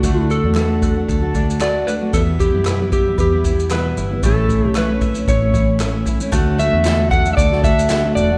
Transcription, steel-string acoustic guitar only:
X:1
M:4/4
L:1/16
Q:"Swing 16ths" 1/4=114
K:D
V:1 name="Steel-string acoustic guitar"
[D,A,DF]3 [A,DF] [D,A,DF]3 [A,DF]2 [A,DF] [D,A,DF]2 [D,A,DF]2 [D,A,DF] [A,DF] | [E,,B,,E,G,B,E]3 [E,G,B,E] [E,,B,,E,G,B,E] [E,G,B,E]2 [E,G,B,E]2 [E,G,B,E] [E,G,B,E]2 [E,,B,,E,G,B,E]2 [E,G,B,E] [E,G,B,E] | [A,,E,A,CE]3 [A,CE] [A,,E,A,CE] [A,CE]2 [A,CE]2 [A,CE] [E,A,CE]2 [A,,E,A,CE]2 [E,A,CE] [A,CE] | [D,A,DF]2 [D,A,DF]2 [D,A,DF]2 [D,A,DF] [A,DF]2 [A,DF] [D,A,DF]2 [D,A,DF] [A,DF]2 [A,DF] |]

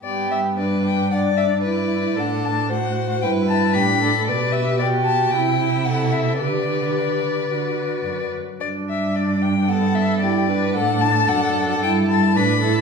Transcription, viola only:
X:1
M:4/4
L:1/8
Q:1/4=113
K:G
V:1 name="Viola"
B,2 D4 E2 | D2 F2 E2 D D | G2 F2 E E A2 | G4 F3 z |
D4 B,2 E D- | D2 D2 E2 D E |]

